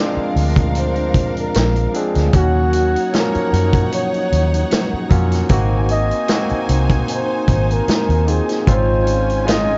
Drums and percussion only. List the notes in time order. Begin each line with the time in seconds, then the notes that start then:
0.36 open hi-hat
0.56 kick, closed hi-hat
0.75 closed hi-hat
0.95 closed hi-hat
1.14 kick, closed hi-hat
1.37 closed hi-hat
1.54 snare, closed hi-hat
1.76 closed hi-hat
1.94 closed hi-hat
2.15 snare, closed hi-hat
2.33 kick, closed hi-hat
2.73 closed hi-hat
2.96 closed hi-hat
3.13 snare, closed hi-hat
3.35 closed hi-hat
3.53 closed hi-hat
3.73 kick, closed hi-hat
3.92 closed hi-hat
4.14 closed hi-hat
4.32 closed hi-hat
4.54 closed hi-hat
4.71 snare, closed hi-hat
5.10 kick, closed hi-hat
5.31 snare, closed hi-hat
5.49 kick, closed hi-hat
5.89 closed hi-hat
6.11 closed hi-hat
6.28 snare, closed hi-hat
6.49 closed hi-hat
6.69 closed hi-hat
6.90 kick, closed hi-hat
7.08 closed hi-hat
7.48 kick, closed hi-hat
7.71 closed hi-hat
7.88 snare, closed hi-hat
8.10 closed hi-hat
8.28 closed hi-hat
8.49 snare, closed hi-hat
8.67 kick, closed hi-hat
9.07 closed hi-hat
9.30 closed hi-hat
9.48 snare, closed hi-hat